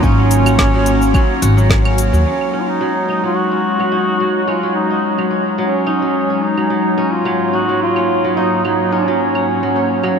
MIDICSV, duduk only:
0, 0, Header, 1, 2, 480
1, 0, Start_track
1, 0, Tempo, 555556
1, 29, Time_signature, 4, 2, 24, 8
1, 8804, End_track
2, 0, Start_track
2, 0, Title_t, "Duduk"
2, 0, Program_c, 0, 69
2, 32, Note_on_c, 0, 61, 106
2, 1470, Note_off_c, 0, 61, 0
2, 1956, Note_on_c, 0, 61, 80
2, 2249, Note_on_c, 0, 65, 60
2, 2262, Note_off_c, 0, 61, 0
2, 2325, Note_on_c, 0, 63, 84
2, 2338, Note_off_c, 0, 65, 0
2, 2799, Note_off_c, 0, 63, 0
2, 2804, Note_on_c, 0, 65, 88
2, 2903, Note_on_c, 0, 66, 107
2, 2916, Note_off_c, 0, 65, 0
2, 3866, Note_off_c, 0, 66, 0
2, 3871, Note_on_c, 0, 65, 90
2, 4093, Note_off_c, 0, 65, 0
2, 4103, Note_on_c, 0, 63, 83
2, 4552, Note_off_c, 0, 63, 0
2, 4835, Note_on_c, 0, 61, 86
2, 5552, Note_on_c, 0, 63, 94
2, 5565, Note_off_c, 0, 61, 0
2, 6163, Note_on_c, 0, 65, 90
2, 6176, Note_off_c, 0, 63, 0
2, 6514, Note_on_c, 0, 66, 103
2, 6527, Note_off_c, 0, 65, 0
2, 6751, Note_off_c, 0, 66, 0
2, 6756, Note_on_c, 0, 65, 104
2, 7237, Note_on_c, 0, 63, 89
2, 7250, Note_off_c, 0, 65, 0
2, 7463, Note_off_c, 0, 63, 0
2, 7468, Note_on_c, 0, 63, 82
2, 7714, Note_on_c, 0, 61, 84
2, 7727, Note_off_c, 0, 63, 0
2, 8804, Note_off_c, 0, 61, 0
2, 8804, End_track
0, 0, End_of_file